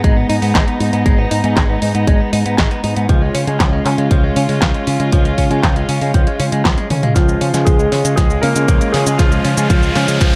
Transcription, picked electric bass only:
0, 0, Header, 1, 2, 480
1, 0, Start_track
1, 0, Tempo, 508475
1, 999, Time_signature, 4, 2, 24, 8
1, 9775, End_track
2, 0, Start_track
2, 0, Title_t, "Picked electric bass"
2, 0, Program_c, 0, 34
2, 38, Note_on_c, 0, 32, 88
2, 216, Note_off_c, 0, 32, 0
2, 278, Note_on_c, 0, 44, 91
2, 367, Note_off_c, 0, 44, 0
2, 397, Note_on_c, 0, 44, 83
2, 487, Note_off_c, 0, 44, 0
2, 519, Note_on_c, 0, 32, 85
2, 608, Note_off_c, 0, 32, 0
2, 758, Note_on_c, 0, 44, 86
2, 848, Note_off_c, 0, 44, 0
2, 878, Note_on_c, 0, 44, 91
2, 967, Note_off_c, 0, 44, 0
2, 998, Note_on_c, 0, 32, 98
2, 1177, Note_off_c, 0, 32, 0
2, 1239, Note_on_c, 0, 44, 92
2, 1328, Note_off_c, 0, 44, 0
2, 1359, Note_on_c, 0, 44, 99
2, 1448, Note_off_c, 0, 44, 0
2, 1478, Note_on_c, 0, 32, 101
2, 1657, Note_off_c, 0, 32, 0
2, 1718, Note_on_c, 0, 44, 99
2, 1807, Note_off_c, 0, 44, 0
2, 1838, Note_on_c, 0, 44, 80
2, 1927, Note_off_c, 0, 44, 0
2, 1958, Note_on_c, 0, 32, 97
2, 2048, Note_off_c, 0, 32, 0
2, 2197, Note_on_c, 0, 44, 83
2, 2287, Note_off_c, 0, 44, 0
2, 2317, Note_on_c, 0, 44, 83
2, 2407, Note_off_c, 0, 44, 0
2, 2438, Note_on_c, 0, 32, 79
2, 2527, Note_off_c, 0, 32, 0
2, 2679, Note_on_c, 0, 44, 81
2, 2768, Note_off_c, 0, 44, 0
2, 2798, Note_on_c, 0, 44, 99
2, 2887, Note_off_c, 0, 44, 0
2, 2918, Note_on_c, 0, 37, 101
2, 3097, Note_off_c, 0, 37, 0
2, 3158, Note_on_c, 0, 49, 87
2, 3248, Note_off_c, 0, 49, 0
2, 3279, Note_on_c, 0, 49, 101
2, 3368, Note_off_c, 0, 49, 0
2, 3399, Note_on_c, 0, 37, 110
2, 3577, Note_off_c, 0, 37, 0
2, 3638, Note_on_c, 0, 49, 96
2, 3728, Note_off_c, 0, 49, 0
2, 3757, Note_on_c, 0, 49, 81
2, 3847, Note_off_c, 0, 49, 0
2, 3879, Note_on_c, 0, 37, 90
2, 4057, Note_off_c, 0, 37, 0
2, 4118, Note_on_c, 0, 49, 95
2, 4207, Note_off_c, 0, 49, 0
2, 4238, Note_on_c, 0, 49, 81
2, 4327, Note_off_c, 0, 49, 0
2, 4358, Note_on_c, 0, 37, 84
2, 4448, Note_off_c, 0, 37, 0
2, 4599, Note_on_c, 0, 49, 86
2, 4688, Note_off_c, 0, 49, 0
2, 4719, Note_on_c, 0, 49, 90
2, 4808, Note_off_c, 0, 49, 0
2, 4839, Note_on_c, 0, 37, 101
2, 5017, Note_off_c, 0, 37, 0
2, 5079, Note_on_c, 0, 49, 89
2, 5168, Note_off_c, 0, 49, 0
2, 5198, Note_on_c, 0, 49, 103
2, 5287, Note_off_c, 0, 49, 0
2, 5319, Note_on_c, 0, 37, 109
2, 5497, Note_off_c, 0, 37, 0
2, 5557, Note_on_c, 0, 49, 98
2, 5647, Note_off_c, 0, 49, 0
2, 5678, Note_on_c, 0, 49, 84
2, 5767, Note_off_c, 0, 49, 0
2, 5798, Note_on_c, 0, 37, 99
2, 5888, Note_off_c, 0, 37, 0
2, 6038, Note_on_c, 0, 49, 93
2, 6127, Note_off_c, 0, 49, 0
2, 6158, Note_on_c, 0, 49, 94
2, 6247, Note_off_c, 0, 49, 0
2, 6278, Note_on_c, 0, 37, 90
2, 6367, Note_off_c, 0, 37, 0
2, 6518, Note_on_c, 0, 49, 88
2, 6608, Note_off_c, 0, 49, 0
2, 6637, Note_on_c, 0, 49, 84
2, 6727, Note_off_c, 0, 49, 0
2, 6758, Note_on_c, 0, 37, 99
2, 6937, Note_off_c, 0, 37, 0
2, 6996, Note_on_c, 0, 49, 89
2, 7087, Note_off_c, 0, 49, 0
2, 7117, Note_on_c, 0, 49, 100
2, 7207, Note_off_c, 0, 49, 0
2, 7238, Note_on_c, 0, 37, 102
2, 7416, Note_off_c, 0, 37, 0
2, 7477, Note_on_c, 0, 49, 93
2, 7567, Note_off_c, 0, 49, 0
2, 7597, Note_on_c, 0, 49, 79
2, 7687, Note_off_c, 0, 49, 0
2, 7718, Note_on_c, 0, 37, 88
2, 7897, Note_off_c, 0, 37, 0
2, 7958, Note_on_c, 0, 49, 92
2, 8047, Note_off_c, 0, 49, 0
2, 8078, Note_on_c, 0, 49, 81
2, 8168, Note_off_c, 0, 49, 0
2, 8197, Note_on_c, 0, 37, 83
2, 8287, Note_off_c, 0, 37, 0
2, 8437, Note_on_c, 0, 49, 86
2, 8527, Note_off_c, 0, 49, 0
2, 8558, Note_on_c, 0, 49, 92
2, 8648, Note_off_c, 0, 49, 0
2, 8677, Note_on_c, 0, 37, 95
2, 8856, Note_off_c, 0, 37, 0
2, 8918, Note_on_c, 0, 49, 91
2, 9007, Note_off_c, 0, 49, 0
2, 9038, Note_on_c, 0, 49, 103
2, 9127, Note_off_c, 0, 49, 0
2, 9158, Note_on_c, 0, 37, 106
2, 9337, Note_off_c, 0, 37, 0
2, 9398, Note_on_c, 0, 49, 97
2, 9488, Note_off_c, 0, 49, 0
2, 9519, Note_on_c, 0, 49, 83
2, 9608, Note_off_c, 0, 49, 0
2, 9638, Note_on_c, 0, 37, 95
2, 9727, Note_off_c, 0, 37, 0
2, 9775, End_track
0, 0, End_of_file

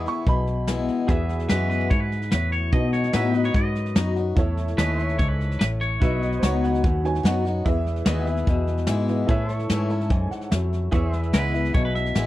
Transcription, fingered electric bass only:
0, 0, Header, 1, 3, 480
1, 0, Start_track
1, 0, Key_signature, 4, "major"
1, 0, Tempo, 409836
1, 1279, Time_signature, 4, 2, 24, 8
1, 14364, End_track
2, 0, Start_track
2, 0, Title_t, "Fingered electric bass"
2, 0, Program_c, 0, 33
2, 312, Note_on_c, 0, 35, 91
2, 1030, Note_off_c, 0, 35, 0
2, 1273, Note_on_c, 0, 40, 88
2, 1742, Note_off_c, 0, 40, 0
2, 1768, Note_on_c, 0, 42, 102
2, 2230, Note_off_c, 0, 42, 0
2, 2239, Note_on_c, 0, 44, 93
2, 2705, Note_off_c, 0, 44, 0
2, 2725, Note_on_c, 0, 40, 95
2, 3188, Note_off_c, 0, 40, 0
2, 3194, Note_on_c, 0, 47, 89
2, 3662, Note_off_c, 0, 47, 0
2, 3679, Note_on_c, 0, 45, 99
2, 4145, Note_off_c, 0, 45, 0
2, 4151, Note_on_c, 0, 44, 93
2, 4621, Note_off_c, 0, 44, 0
2, 4638, Note_on_c, 0, 42, 97
2, 5104, Note_off_c, 0, 42, 0
2, 5117, Note_on_c, 0, 40, 95
2, 5584, Note_off_c, 0, 40, 0
2, 5596, Note_on_c, 0, 39, 107
2, 6063, Note_off_c, 0, 39, 0
2, 6080, Note_on_c, 0, 37, 99
2, 6546, Note_off_c, 0, 37, 0
2, 6566, Note_on_c, 0, 33, 101
2, 7029, Note_off_c, 0, 33, 0
2, 7050, Note_on_c, 0, 35, 98
2, 7511, Note_off_c, 0, 35, 0
2, 7526, Note_on_c, 0, 37, 102
2, 7989, Note_off_c, 0, 37, 0
2, 8012, Note_on_c, 0, 39, 95
2, 8472, Note_off_c, 0, 39, 0
2, 8480, Note_on_c, 0, 42, 97
2, 8946, Note_off_c, 0, 42, 0
2, 8968, Note_on_c, 0, 40, 89
2, 9430, Note_off_c, 0, 40, 0
2, 9441, Note_on_c, 0, 39, 104
2, 9906, Note_off_c, 0, 39, 0
2, 9924, Note_on_c, 0, 40, 94
2, 10388, Note_off_c, 0, 40, 0
2, 10404, Note_on_c, 0, 44, 101
2, 10868, Note_off_c, 0, 44, 0
2, 10878, Note_on_c, 0, 45, 97
2, 11345, Note_off_c, 0, 45, 0
2, 11363, Note_on_c, 0, 44, 105
2, 11827, Note_off_c, 0, 44, 0
2, 11833, Note_on_c, 0, 42, 93
2, 12060, Note_off_c, 0, 42, 0
2, 12320, Note_on_c, 0, 41, 100
2, 12786, Note_off_c, 0, 41, 0
2, 12794, Note_on_c, 0, 40, 97
2, 13263, Note_off_c, 0, 40, 0
2, 13273, Note_on_c, 0, 37, 108
2, 13742, Note_off_c, 0, 37, 0
2, 13760, Note_on_c, 0, 35, 94
2, 14226, Note_off_c, 0, 35, 0
2, 14238, Note_on_c, 0, 33, 100
2, 14364, Note_off_c, 0, 33, 0
2, 14364, End_track
3, 0, Start_track
3, 0, Title_t, "Muted fingered electric bass strokes"
3, 12077, Note_on_c, 9, 29, 43
3, 12194, Note_off_c, 9, 29, 0
3, 14364, End_track
0, 0, End_of_file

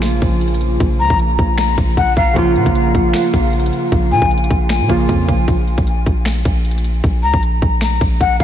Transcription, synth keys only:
0, 0, Header, 1, 2, 480
1, 0, Start_track
1, 0, Key_signature, -5, "minor"
1, 0, Tempo, 389610
1, 989, Time_signature, 4, 2, 24, 8
1, 10397, End_track
2, 0, Start_track
2, 0, Title_t, "Synth keys"
2, 0, Program_c, 0, 88
2, 0, Control_c, 0, 64, 127
2, 0, Note_on_c, 0, 49, 75
2, 0, Note_on_c, 0, 53, 74
2, 0, Note_on_c, 0, 58, 72
2, 0, Note_on_c, 0, 65, 85
2, 2845, Note_off_c, 0, 49, 0
2, 2855, Note_off_c, 0, 53, 0
2, 2864, Note_off_c, 0, 58, 0
2, 2875, Note_off_c, 0, 65, 0
2, 2877, Note_on_c, 0, 49, 78
2, 2896, Note_on_c, 0, 53, 68
2, 2916, Note_on_c, 0, 58, 74
2, 2925, Control_c, 0, 64, 0
2, 2935, Note_on_c, 0, 65, 89
2, 3106, Control_c, 0, 64, 127
2, 5964, Note_off_c, 0, 49, 0
2, 5973, Note_off_c, 0, 53, 0
2, 5983, Note_off_c, 0, 58, 0
2, 5993, Note_off_c, 0, 65, 0
2, 6015, Note_on_c, 0, 49, 62
2, 6024, Note_on_c, 0, 53, 59
2, 6035, Note_on_c, 0, 58, 62
2, 6044, Note_on_c, 0, 65, 70
2, 6742, Note_off_c, 0, 49, 0
2, 6747, Note_off_c, 0, 53, 0
2, 6752, Note_off_c, 0, 58, 0
2, 6757, Note_off_c, 0, 65, 0
2, 6767, Control_c, 0, 64, 0
2, 10397, End_track
0, 0, End_of_file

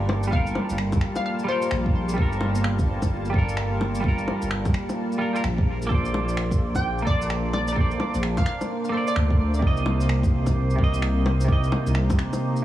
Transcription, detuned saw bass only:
0, 0, Header, 1, 2, 480
1, 0, Start_track
1, 0, Key_signature, -2, "minor"
1, 0, Tempo, 465116
1, 331, Time_signature, 4, 2, 24, 8
1, 13051, End_track
2, 0, Start_track
2, 0, Title_t, "Detuned saw bass"
2, 0, Program_c, 0, 39
2, 0, Note_on_c, 0, 31, 100
2, 560, Note_off_c, 0, 31, 0
2, 721, Note_on_c, 0, 31, 85
2, 1040, Note_off_c, 0, 31, 0
2, 1767, Note_on_c, 0, 34, 91
2, 2238, Note_off_c, 0, 34, 0
2, 2249, Note_on_c, 0, 31, 99
2, 4399, Note_off_c, 0, 31, 0
2, 4564, Note_on_c, 0, 31, 81
2, 4881, Note_off_c, 0, 31, 0
2, 5612, Note_on_c, 0, 34, 95
2, 6080, Note_off_c, 0, 34, 0
2, 6093, Note_on_c, 0, 34, 95
2, 8241, Note_off_c, 0, 34, 0
2, 8403, Note_on_c, 0, 34, 86
2, 8721, Note_off_c, 0, 34, 0
2, 9453, Note_on_c, 0, 38, 102
2, 9921, Note_off_c, 0, 38, 0
2, 9932, Note_on_c, 0, 36, 102
2, 12080, Note_off_c, 0, 36, 0
2, 12241, Note_on_c, 0, 36, 80
2, 12560, Note_off_c, 0, 36, 0
2, 13051, End_track
0, 0, End_of_file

